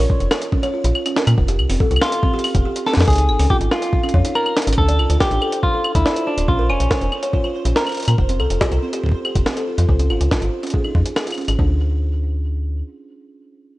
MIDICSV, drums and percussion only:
0, 0, Header, 1, 2, 480
1, 0, Start_track
1, 0, Tempo, 425532
1, 1552, Time_signature, 4, 2, 24, 8
1, 15549, End_track
2, 0, Start_track
2, 0, Title_t, "Drums"
2, 112, Note_on_c, 9, 36, 107
2, 225, Note_off_c, 9, 36, 0
2, 232, Note_on_c, 9, 42, 36
2, 345, Note_off_c, 9, 42, 0
2, 352, Note_on_c, 9, 38, 121
2, 352, Note_on_c, 9, 75, 63
2, 465, Note_off_c, 9, 38, 0
2, 465, Note_off_c, 9, 75, 0
2, 472, Note_on_c, 9, 42, 62
2, 585, Note_off_c, 9, 42, 0
2, 592, Note_on_c, 9, 36, 103
2, 705, Note_off_c, 9, 36, 0
2, 712, Note_on_c, 9, 42, 37
2, 712, Note_on_c, 9, 75, 39
2, 825, Note_off_c, 9, 42, 0
2, 825, Note_off_c, 9, 75, 0
2, 952, Note_on_c, 9, 42, 65
2, 1064, Note_off_c, 9, 42, 0
2, 1072, Note_on_c, 9, 75, 62
2, 1185, Note_off_c, 9, 75, 0
2, 1191, Note_on_c, 9, 42, 51
2, 1191, Note_on_c, 9, 75, 55
2, 1304, Note_off_c, 9, 42, 0
2, 1304, Note_off_c, 9, 75, 0
2, 1312, Note_on_c, 9, 38, 112
2, 1424, Note_off_c, 9, 38, 0
2, 1432, Note_on_c, 9, 42, 61
2, 1432, Note_on_c, 9, 75, 77
2, 1545, Note_off_c, 9, 42, 0
2, 1545, Note_off_c, 9, 75, 0
2, 1552, Note_on_c, 9, 36, 105
2, 1665, Note_off_c, 9, 36, 0
2, 1672, Note_on_c, 9, 42, 54
2, 1784, Note_off_c, 9, 42, 0
2, 1792, Note_on_c, 9, 75, 53
2, 1905, Note_off_c, 9, 75, 0
2, 1912, Note_on_c, 9, 46, 87
2, 2024, Note_off_c, 9, 46, 0
2, 2032, Note_on_c, 9, 36, 106
2, 2145, Note_off_c, 9, 36, 0
2, 2152, Note_on_c, 9, 42, 36
2, 2211, Note_on_c, 9, 75, 66
2, 2264, Note_off_c, 9, 42, 0
2, 2272, Note_on_c, 9, 38, 121
2, 2324, Note_off_c, 9, 75, 0
2, 2384, Note_off_c, 9, 38, 0
2, 2392, Note_on_c, 9, 42, 67
2, 2505, Note_off_c, 9, 42, 0
2, 2512, Note_on_c, 9, 36, 108
2, 2625, Note_off_c, 9, 36, 0
2, 2692, Note_on_c, 9, 42, 36
2, 2751, Note_on_c, 9, 46, 64
2, 2751, Note_on_c, 9, 75, 81
2, 2805, Note_off_c, 9, 42, 0
2, 2864, Note_off_c, 9, 46, 0
2, 2864, Note_off_c, 9, 75, 0
2, 2871, Note_on_c, 9, 42, 67
2, 2872, Note_on_c, 9, 36, 116
2, 2984, Note_off_c, 9, 42, 0
2, 2985, Note_off_c, 9, 36, 0
2, 3111, Note_on_c, 9, 42, 54
2, 3224, Note_off_c, 9, 42, 0
2, 3231, Note_on_c, 9, 38, 49
2, 3311, Note_off_c, 9, 38, 0
2, 3311, Note_on_c, 9, 38, 69
2, 3352, Note_on_c, 9, 42, 29
2, 3382, Note_off_c, 9, 42, 0
2, 3382, Note_on_c, 9, 42, 33
2, 3392, Note_off_c, 9, 38, 0
2, 3392, Note_on_c, 9, 38, 91
2, 3412, Note_off_c, 9, 42, 0
2, 3412, Note_on_c, 9, 42, 36
2, 3442, Note_off_c, 9, 42, 0
2, 3442, Note_on_c, 9, 42, 40
2, 3472, Note_off_c, 9, 42, 0
2, 3472, Note_on_c, 9, 36, 108
2, 3472, Note_on_c, 9, 42, 45
2, 3502, Note_off_c, 9, 42, 0
2, 3502, Note_on_c, 9, 42, 50
2, 3504, Note_off_c, 9, 38, 0
2, 3532, Note_off_c, 9, 42, 0
2, 3532, Note_on_c, 9, 42, 55
2, 3561, Note_off_c, 9, 42, 0
2, 3561, Note_on_c, 9, 42, 56
2, 3585, Note_off_c, 9, 36, 0
2, 3592, Note_off_c, 9, 42, 0
2, 3592, Note_on_c, 9, 42, 57
2, 3704, Note_off_c, 9, 42, 0
2, 3712, Note_on_c, 9, 75, 56
2, 3824, Note_off_c, 9, 75, 0
2, 3831, Note_on_c, 9, 46, 85
2, 3944, Note_off_c, 9, 46, 0
2, 3952, Note_on_c, 9, 36, 107
2, 4065, Note_off_c, 9, 36, 0
2, 4072, Note_on_c, 9, 42, 38
2, 4184, Note_off_c, 9, 42, 0
2, 4191, Note_on_c, 9, 38, 114
2, 4191, Note_on_c, 9, 75, 66
2, 4304, Note_off_c, 9, 38, 0
2, 4304, Note_off_c, 9, 75, 0
2, 4311, Note_on_c, 9, 42, 71
2, 4424, Note_off_c, 9, 42, 0
2, 4432, Note_on_c, 9, 36, 105
2, 4544, Note_off_c, 9, 36, 0
2, 4551, Note_on_c, 9, 75, 40
2, 4612, Note_on_c, 9, 42, 40
2, 4664, Note_off_c, 9, 75, 0
2, 4672, Note_on_c, 9, 36, 82
2, 4724, Note_off_c, 9, 42, 0
2, 4784, Note_off_c, 9, 36, 0
2, 4792, Note_on_c, 9, 42, 69
2, 4905, Note_off_c, 9, 42, 0
2, 4912, Note_on_c, 9, 75, 67
2, 5024, Note_off_c, 9, 75, 0
2, 5032, Note_on_c, 9, 75, 57
2, 5145, Note_off_c, 9, 75, 0
2, 5152, Note_on_c, 9, 38, 114
2, 5152, Note_on_c, 9, 42, 54
2, 5212, Note_off_c, 9, 42, 0
2, 5212, Note_on_c, 9, 42, 65
2, 5265, Note_off_c, 9, 38, 0
2, 5272, Note_off_c, 9, 42, 0
2, 5272, Note_on_c, 9, 42, 75
2, 5333, Note_off_c, 9, 42, 0
2, 5333, Note_on_c, 9, 42, 84
2, 5392, Note_on_c, 9, 36, 107
2, 5445, Note_off_c, 9, 42, 0
2, 5505, Note_off_c, 9, 36, 0
2, 5512, Note_on_c, 9, 42, 56
2, 5625, Note_off_c, 9, 42, 0
2, 5632, Note_on_c, 9, 75, 53
2, 5745, Note_off_c, 9, 75, 0
2, 5752, Note_on_c, 9, 42, 71
2, 5865, Note_off_c, 9, 42, 0
2, 5872, Note_on_c, 9, 36, 106
2, 5872, Note_on_c, 9, 38, 118
2, 5985, Note_off_c, 9, 36, 0
2, 5985, Note_off_c, 9, 38, 0
2, 5992, Note_on_c, 9, 42, 36
2, 6105, Note_off_c, 9, 42, 0
2, 6112, Note_on_c, 9, 75, 61
2, 6225, Note_off_c, 9, 75, 0
2, 6232, Note_on_c, 9, 42, 67
2, 6345, Note_off_c, 9, 42, 0
2, 6352, Note_on_c, 9, 36, 102
2, 6465, Note_off_c, 9, 36, 0
2, 6592, Note_on_c, 9, 75, 77
2, 6705, Note_off_c, 9, 75, 0
2, 6712, Note_on_c, 9, 36, 116
2, 6713, Note_on_c, 9, 42, 68
2, 6825, Note_off_c, 9, 36, 0
2, 6825, Note_off_c, 9, 42, 0
2, 6832, Note_on_c, 9, 38, 110
2, 6945, Note_off_c, 9, 38, 0
2, 6952, Note_on_c, 9, 42, 56
2, 7065, Note_off_c, 9, 42, 0
2, 7192, Note_on_c, 9, 42, 66
2, 7305, Note_off_c, 9, 42, 0
2, 7312, Note_on_c, 9, 36, 106
2, 7425, Note_off_c, 9, 36, 0
2, 7552, Note_on_c, 9, 75, 50
2, 7665, Note_off_c, 9, 75, 0
2, 7672, Note_on_c, 9, 42, 67
2, 7785, Note_off_c, 9, 42, 0
2, 7792, Note_on_c, 9, 36, 108
2, 7792, Note_on_c, 9, 38, 121
2, 7905, Note_off_c, 9, 36, 0
2, 7905, Note_off_c, 9, 38, 0
2, 7912, Note_on_c, 9, 42, 36
2, 8025, Note_off_c, 9, 42, 0
2, 8032, Note_on_c, 9, 75, 58
2, 8145, Note_off_c, 9, 75, 0
2, 8153, Note_on_c, 9, 42, 66
2, 8265, Note_off_c, 9, 42, 0
2, 8272, Note_on_c, 9, 36, 104
2, 8385, Note_off_c, 9, 36, 0
2, 8392, Note_on_c, 9, 75, 36
2, 8505, Note_off_c, 9, 75, 0
2, 8632, Note_on_c, 9, 42, 67
2, 8745, Note_off_c, 9, 42, 0
2, 8752, Note_on_c, 9, 38, 117
2, 8865, Note_off_c, 9, 38, 0
2, 8873, Note_on_c, 9, 42, 25
2, 8873, Note_on_c, 9, 75, 52
2, 8903, Note_off_c, 9, 42, 0
2, 8903, Note_on_c, 9, 42, 28
2, 8933, Note_off_c, 9, 42, 0
2, 8933, Note_on_c, 9, 42, 31
2, 8963, Note_off_c, 9, 42, 0
2, 8963, Note_on_c, 9, 42, 35
2, 8985, Note_off_c, 9, 75, 0
2, 8993, Note_off_c, 9, 42, 0
2, 8993, Note_on_c, 9, 42, 36
2, 9023, Note_off_c, 9, 42, 0
2, 9023, Note_on_c, 9, 42, 39
2, 9053, Note_off_c, 9, 42, 0
2, 9053, Note_on_c, 9, 42, 43
2, 9083, Note_off_c, 9, 42, 0
2, 9083, Note_on_c, 9, 42, 46
2, 9113, Note_off_c, 9, 42, 0
2, 9113, Note_on_c, 9, 42, 65
2, 9113, Note_on_c, 9, 75, 74
2, 9225, Note_off_c, 9, 42, 0
2, 9225, Note_off_c, 9, 75, 0
2, 9232, Note_on_c, 9, 36, 107
2, 9345, Note_off_c, 9, 36, 0
2, 9353, Note_on_c, 9, 42, 54
2, 9465, Note_off_c, 9, 42, 0
2, 9473, Note_on_c, 9, 75, 46
2, 9585, Note_off_c, 9, 75, 0
2, 9593, Note_on_c, 9, 42, 66
2, 9705, Note_off_c, 9, 42, 0
2, 9712, Note_on_c, 9, 36, 104
2, 9712, Note_on_c, 9, 38, 119
2, 9825, Note_off_c, 9, 36, 0
2, 9825, Note_off_c, 9, 38, 0
2, 9833, Note_on_c, 9, 42, 35
2, 9945, Note_off_c, 9, 42, 0
2, 10073, Note_on_c, 9, 42, 61
2, 10185, Note_off_c, 9, 42, 0
2, 10192, Note_on_c, 9, 36, 47
2, 10222, Note_off_c, 9, 36, 0
2, 10222, Note_on_c, 9, 36, 60
2, 10252, Note_off_c, 9, 36, 0
2, 10252, Note_on_c, 9, 36, 73
2, 10282, Note_off_c, 9, 36, 0
2, 10282, Note_on_c, 9, 36, 85
2, 10395, Note_off_c, 9, 36, 0
2, 10432, Note_on_c, 9, 75, 71
2, 10545, Note_off_c, 9, 75, 0
2, 10552, Note_on_c, 9, 36, 114
2, 10552, Note_on_c, 9, 42, 64
2, 10665, Note_off_c, 9, 36, 0
2, 10665, Note_off_c, 9, 42, 0
2, 10672, Note_on_c, 9, 38, 118
2, 10785, Note_off_c, 9, 38, 0
2, 10793, Note_on_c, 9, 42, 51
2, 10905, Note_off_c, 9, 42, 0
2, 11032, Note_on_c, 9, 42, 59
2, 11145, Note_off_c, 9, 42, 0
2, 11152, Note_on_c, 9, 36, 106
2, 11265, Note_off_c, 9, 36, 0
2, 11273, Note_on_c, 9, 42, 50
2, 11385, Note_off_c, 9, 42, 0
2, 11392, Note_on_c, 9, 75, 46
2, 11505, Note_off_c, 9, 75, 0
2, 11512, Note_on_c, 9, 42, 60
2, 11625, Note_off_c, 9, 42, 0
2, 11632, Note_on_c, 9, 36, 103
2, 11632, Note_on_c, 9, 38, 118
2, 11745, Note_off_c, 9, 36, 0
2, 11745, Note_off_c, 9, 38, 0
2, 11752, Note_on_c, 9, 42, 34
2, 11865, Note_off_c, 9, 42, 0
2, 11992, Note_on_c, 9, 42, 27
2, 12032, Note_off_c, 9, 42, 0
2, 12032, Note_on_c, 9, 42, 37
2, 12072, Note_off_c, 9, 42, 0
2, 12072, Note_on_c, 9, 42, 46
2, 12112, Note_on_c, 9, 36, 97
2, 12185, Note_off_c, 9, 42, 0
2, 12225, Note_off_c, 9, 36, 0
2, 12232, Note_on_c, 9, 75, 34
2, 12345, Note_off_c, 9, 75, 0
2, 12352, Note_on_c, 9, 36, 79
2, 12465, Note_off_c, 9, 36, 0
2, 12472, Note_on_c, 9, 42, 61
2, 12585, Note_off_c, 9, 42, 0
2, 12592, Note_on_c, 9, 38, 111
2, 12592, Note_on_c, 9, 75, 52
2, 12705, Note_off_c, 9, 38, 0
2, 12705, Note_off_c, 9, 75, 0
2, 12712, Note_on_c, 9, 42, 46
2, 12752, Note_off_c, 9, 42, 0
2, 12752, Note_on_c, 9, 42, 39
2, 12772, Note_on_c, 9, 75, 47
2, 12792, Note_off_c, 9, 42, 0
2, 12792, Note_on_c, 9, 42, 30
2, 12832, Note_off_c, 9, 42, 0
2, 12832, Note_on_c, 9, 42, 24
2, 12872, Note_off_c, 9, 42, 0
2, 12872, Note_on_c, 9, 42, 20
2, 12885, Note_off_c, 9, 75, 0
2, 12912, Note_off_c, 9, 42, 0
2, 12912, Note_on_c, 9, 42, 16
2, 12952, Note_off_c, 9, 42, 0
2, 12952, Note_on_c, 9, 42, 58
2, 12952, Note_on_c, 9, 75, 67
2, 13064, Note_off_c, 9, 42, 0
2, 13064, Note_off_c, 9, 75, 0
2, 13072, Note_on_c, 9, 36, 100
2, 13185, Note_off_c, 9, 36, 0
2, 15549, End_track
0, 0, End_of_file